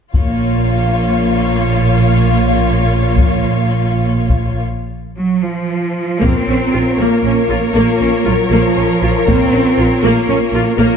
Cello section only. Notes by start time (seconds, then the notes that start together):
0.15 A#2
5.18 F#3
5.44 F3
6.22 C4
6.99 A#3
7.75 A#3
8.26 F#3
8.51 F3
9.28 C4
10.03 A#3
10.79 A#3